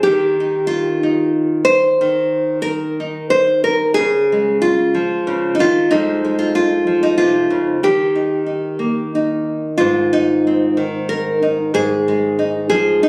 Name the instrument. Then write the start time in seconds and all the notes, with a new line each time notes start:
nylon-string guitar
0.03 D#3 D#4 G4
0.40 D#4
0.67 F4
1.03 D#4
1.65 C5
2.01 D#3
2.62 A#4
3.00 D#4
3.30 C5
3.64 A#4
3.94 C#3 G#4
4.32 G#3
4.62 F4
4.94 F3
5.27 C#3
5.55 D#4
5.59 D#3 F4
5.91 F2 F3 G#3 D#4
6.25 G#3
6.39 F4
6.55 F4
6.87 F3
7.03 D#4
7.18 C3 F4
7.50 C#3
7.83 D#3 G4
8.15 D#4
8.46 D#4
8.79 A#3
9.15 D#4
9.78 G#2 F4
10.13 D#4
10.47 C4
10.77 D#3
11.09 A#4
11.42 D#4
11.74 G#2 G#4
12.08 G#3
12.39 D#4
12.70 F3 G#4
13.03 D#4